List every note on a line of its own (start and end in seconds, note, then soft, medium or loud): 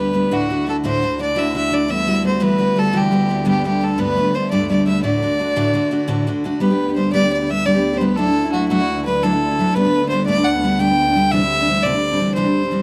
0.00 0.32 D2 medium
0.00 0.32 D3 medium
0.00 0.12 G3 medium
0.00 0.13 B3 medium
0.00 0.13 D4 medium
0.00 0.14 G4 medium
0.00 0.35 B4 medium
0.13 0.31 G3 soft
0.13 0.31 B3 medium
0.13 0.30 D4 medium
0.13 0.32 G4 medium
0.31 0.50 D2 medium
0.31 6.61 D2 soft
0.31 0.50 A2 medium
0.31 0.49 D3 medium
0.31 6.61 D3 medium
0.31 0.49 D4 medium
0.31 0.49 E4 medium
0.31 0.50 F#4 medium
0.31 0.68 F#4 medium
0.50 0.65 D3 medium
0.50 0.66 D4 medium
0.50 0.66 E4 medium
0.50 0.67 F#4 medium
0.67 0.83 D3 soft
0.67 0.84 D4 medium
0.67 0.84 E4 medium
0.67 0.84 F#4 medium
0.67 0.76 A4 medium
0.84 1.03 D2 medium
0.84 1.03 A2 medium
0.84 1.01 D3 medium
0.84 1.02 D4 medium
0.84 1.02 E4 medium
0.84 1.03 F#4 medium
0.84 1.18 C5 medium
1.02 1.18 D3 soft
1.02 1.18 D4 soft
1.02 1.19 E4 medium
1.02 1.19 F#4 medium
1.19 1.35 D3 soft
1.19 1.35 D4 medium
1.19 1.35 E4 medium
1.19 1.35 F#4 medium
1.19 1.40 D5 medium
1.35 1.54 D2 medium
1.35 1.55 A2 medium
1.35 1.53 D3 medium
1.35 1.54 D4 medium
1.35 1.55 E4 medium
1.35 1.55 F#4 medium
1.39 1.56 E5 medium
1.55 1.70 D3 medium
1.55 1.71 D4 medium
1.55 1.71 E4 medium
1.55 1.71 F#4 medium
1.55 1.75 E5 medium
1.71 1.88 D3 soft
1.71 1.89 D4 medium
1.71 1.88 E4 soft
1.71 1.88 F#4 medium
1.71 1.92 D5 medium
1.88 2.07 E3 medium
1.88 2.06 G3 medium
1.88 2.06 B3 medium
1.88 2.07 E4 medium
1.88 2.07 F#4 medium
1.88 2.25 E5 loud
2.07 2.22 G3 medium
2.07 2.23 B3 medium
2.07 2.24 E4 medium
2.07 2.24 F#4 medium
2.24 2.39 G3 soft
2.24 2.40 B3 soft
2.24 2.40 E4 medium
2.24 2.40 F#4 medium
2.24 2.44 C5 medium
2.40 2.59 E3 medium
2.40 2.57 G3 medium
2.40 2.58 B3 medium
2.40 2.58 E4 medium
2.40 2.59 F#4 medium
2.40 2.80 B4 medium
2.58 2.74 G3 medium
2.58 2.75 B3 medium
2.58 2.76 E4 medium
2.58 2.76 F#4 medium
2.76 2.92 G3 soft
2.76 2.92 B3 medium
2.76 2.92 E4 medium
2.76 2.92 F#4 medium
2.76 2.98 A4 medium
2.93 3.12 E3 medium
2.93 3.10 G3 medium
2.93 3.11 B3 medium
2.93 3.11 E4 medium
2.93 3.12 F#4 medium
2.97 3.48 G4 medium
3.11 3.28 G3 medium
3.11 3.29 B3 medium
3.11 3.29 E4 medium
3.11 3.30 F#4 medium
3.29 3.44 G3 soft
3.29 3.45 B3 medium
3.29 3.46 E4 medium
3.29 3.46 F#4 medium
3.45 3.64 G2 medium
3.45 3.65 D3 medium
3.45 3.63 G3 medium
3.45 3.64 A3 medium
3.45 3.64 B3 medium
3.45 3.65 D4 medium
3.49 3.65 G4 medium
3.64 3.79 G3 medium
3.64 3.81 A3 medium
3.64 3.80 B3 medium
3.64 3.81 D4 medium
3.64 3.86 G4 medium
3.81 3.97 G3 soft
3.81 3.97 A3 soft
3.81 3.97 B3 medium
3.81 3.98 D4 medium
3.81 4.01 A4 medium
3.98 4.17 G2 medium
3.98 4.17 D3 medium
3.98 4.15 G3 medium
3.98 4.17 A3 medium
3.98 4.16 B3 medium
3.98 4.17 D4 medium
3.98 4.36 B4 loud
4.17 4.33 G3 medium
4.17 4.34 A3 medium
4.17 4.33 B3 soft
4.17 4.35 D4 medium
4.34 4.51 G3 soft
4.34 4.51 A3 medium
4.34 4.51 B3 soft
4.34 4.52 D4 medium
4.34 4.50 C5 medium
4.51 4.70 G2 medium
4.51 4.70 D3 medium
4.51 4.68 G3 medium
4.51 4.70 A3 medium
4.51 4.69 B3 medium
4.51 4.70 D4 medium
4.51 4.69 D5 medium
4.70 4.85 G3 medium
4.70 4.86 A3 medium
4.70 4.86 B3 medium
4.70 4.87 D4 medium
4.70 4.86 D5 medium
4.86 5.03 G3 medium
4.86 5.03 A3 medium
4.86 5.03 B3 medium
4.86 5.03 D4 medium
4.86 5.03 E5 medium
5.03 5.22 D2 medium
5.03 5.22 A2 medium
5.03 5.21 D3 medium
5.03 5.23 A3 medium
5.03 5.22 D4 medium
5.03 5.23 F#4 medium
5.03 6.23 D5 medium
5.22 5.38 D3 medium
5.22 5.39 A3 medium
5.22 5.39 D4 medium
5.22 5.40 F#4 medium
5.39 5.55 D3 medium
5.39 5.56 A3 medium
5.39 5.55 D4 soft
5.39 5.56 F#4 medium
5.56 5.75 D2 medium
5.56 5.75 A2 medium
5.56 5.72 D3 medium
5.56 5.74 A3 medium
5.56 5.73 D4 loud
5.56 5.74 F#4 medium
5.73 5.90 D3 medium
5.73 5.91 A3 medium
5.73 5.90 D4 medium
5.73 5.91 F#4 medium
5.91 6.07 D3 medium
5.91 6.07 A3 medium
5.91 6.07 D4 medium
5.91 6.08 F#4 medium
6.08 6.27 D2 medium
6.08 6.27 A2 medium
6.08 6.26 D3 medium
6.08 6.27 A3 medium
6.08 6.26 D4 medium
6.08 6.27 F#4 medium
6.27 6.43 D3 medium
6.27 6.45 A3 medium
6.27 6.44 D4 medium
6.27 6.45 F#4 medium
6.44 6.60 D3 medium
6.44 6.61 A3 medium
6.44 6.60 D4 medium
6.44 6.61 F#4 medium
6.60 12.82 D2 medium
6.60 12.82 D3 soft
6.60 6.70 G3 medium
6.60 6.70 B3 medium
6.60 6.70 D4 medium
6.60 6.69 G4 medium
6.60 6.94 B4 medium
6.70 6.89 B3 soft
6.70 6.88 D4 soft
6.70 6.87 G4 medium
6.88 6.96 B3 soft
6.88 6.96 D4 soft
6.88 6.97 G4 soft
6.96 7.12 G3 medium
6.96 7.12 B3 soft
6.96 7.13 D4 medium
6.96 7.13 G4 medium
6.96 7.12 C5 medium
7.13 7.23 G3 medium
7.13 7.23 B3 medium
7.13 7.22 D4 medium
7.13 7.21 G4 medium
7.13 7.31 D5 loud
7.22 7.41 B3 soft
7.22 7.41 D4 soft
7.22 7.39 G4 soft
7.33 7.46 D5 medium
7.41 7.49 B3 soft
7.41 7.49 D4 soft
7.41 7.49 G4 soft
7.46 7.64 G3 medium
7.46 7.65 B3 medium
7.46 7.66 D4 medium
7.46 7.52 D5 medium
7.46 7.67 E5 medium
7.51 7.66 G4 medium
7.66 7.75 G3 medium
7.66 7.75 B3 medium
7.66 7.75 D4 medium
7.66 7.74 G4 medium
7.66 7.99 D5 medium
7.75 7.94 B3 soft
7.75 7.93 D4 soft
7.75 7.92 G4 medium
7.93 8.00 B3 soft
7.93 8.01 D4 soft
7.93 8.01 G4 medium
7.97 8.17 G3 medium
7.97 8.17 B3 medium
7.97 8.17 B4 medium
7.97 8.02 C5 medium
8.02 8.17 D4 medium
8.02 8.18 G4 medium
8.16 8.27 F#3 medium
8.16 8.27 A3 medium
8.16 8.26 D4 medium
8.16 8.25 E4 medium
8.16 8.52 A4 medium
8.26 8.45 A3 soft
8.26 8.44 D4 soft
8.26 8.43 E4 medium
8.45 8.52 A3 soft
8.45 8.53 D4 soft
8.45 8.53 E4 soft
8.52 8.69 F#3 soft
8.52 8.70 A3 medium
8.52 8.70 D4 medium
8.52 8.70 E4 medium
8.52 8.68 F#4 medium
8.69 8.80 F#3 medium
8.69 8.80 A3 medium
8.69 8.80 D4 medium
8.69 8.79 E4 medium
8.69 9.03 F#4 loud
8.80 8.99 A3 soft
8.80 8.98 D4 soft
8.80 8.97 E4 soft
8.98 9.06 A3 soft
8.98 9.06 D4 soft
8.98 9.07 E4 soft
9.06 9.22 F#3 medium
9.06 9.22 A3 medium
9.06 9.23 D4 medium
9.06 9.23 E4 medium
9.06 9.24 B4 medium
9.23 9.32 F#3 medium
9.23 9.33 A3 medium
9.23 9.32 D4 medium
9.23 9.31 E4 medium
9.23 9.76 A4 medium
9.33 9.51 A3 soft
9.33 9.50 D4 medium
9.33 9.49 E4 medium
9.51 9.59 A3 soft
9.51 9.59 D4 soft
9.51 9.59 E4 medium
9.59 9.75 F#3 medium
9.59 9.75 A3 medium
9.59 9.75 D4 medium
9.59 9.76 E4 medium
9.74 9.85 G3 medium
9.74 9.85 A3 medium
9.74 9.85 B3 medium
9.74 9.84 D4 medium
9.74 10.08 B4 loud
9.85 10.03 A3 soft
9.85 10.02 B3 soft
9.85 10.02 D4 medium
10.03 10.11 A3 soft
10.03 10.11 B3 soft
10.03 10.11 D4 soft
10.09 10.26 G3 medium
10.09 10.27 A3 medium
10.09 10.27 B3 medium
10.09 10.26 C5 medium
10.13 10.28 D4 medium
10.26 10.37 G3 medium
10.26 10.37 A3 medium
10.26 10.37 B3 medium
10.26 10.37 D4 medium
10.26 10.46 D5 loud
10.38 10.56 A3 soft
10.38 10.54 B3 soft
10.38 10.53 D4 medium
10.44 10.81 F#5 medium
10.54 10.63 A3 soft
10.54 10.63 B3 soft
10.54 10.63 D4 soft
10.63 10.78 G3 medium
10.63 10.79 A3 medium
10.63 10.79 B3 medium
10.63 10.80 D4 medium
10.79 10.89 G3 medium
10.79 10.90 A3 medium
10.79 10.90 B3 medium
10.79 10.88 D4 medium
10.79 11.33 G5 loud
10.90 11.08 A3 soft
10.90 11.07 B3 soft
10.90 11.06 D4 medium
11.08 11.15 A3 soft
11.08 11.16 B3 soft
11.08 11.16 D4 medium
11.16 11.32 G3 soft
11.16 11.32 A3 medium
11.16 11.33 B3 medium
11.16 11.32 D4 medium
11.31 11.42 C3 medium
11.31 11.42 E3 medium
11.31 11.42 G3 medium
11.31 11.42 C4 medium
11.31 11.41 D4 medium
11.31 11.84 E5 loud
11.42 11.61 G3 soft
11.42 11.60 C4 soft
11.42 11.60 D4 soft
11.61 11.68 G3 soft
11.61 11.69 C4 soft
11.61 11.69 D4 medium
11.68 11.84 E3 soft
11.68 11.84 G3 medium
11.68 11.85 C4 medium
11.68 11.85 D4 medium
11.82 11.94 C3 medium
11.82 11.94 E3 medium
11.82 11.94 G3 medium
11.82 11.93 C4 medium
11.82 11.92 D4 medium
11.82 12.34 D5 loud
11.93 12.12 G3 soft
11.93 12.11 C4 soft
11.93 12.10 D4 soft
12.11 12.19 G3 soft
12.11 12.20 C4 soft
12.11 12.20 D4 soft
12.20 12.35 E3 medium
12.20 12.36 G3 medium
12.20 12.36 C4 soft
12.20 12.36 D4 medium
12.35 12.46 C3 medium
12.35 12.46 E3 medium
12.35 12.46 G3 medium
12.35 12.45 C4 medium
12.35 12.43 D4 medium
12.35 12.82 C5 medium
12.45 12.64 G3 soft
12.45 12.63 C4 soft
12.45 12.62 D4 medium
12.63 12.71 G3 soft
12.63 12.71 C4 soft
12.63 12.72 D4 soft
12.71 12.82 E3 medium
12.71 12.82 G3 soft
12.71 12.82 C4 medium
12.71 12.82 D4 medium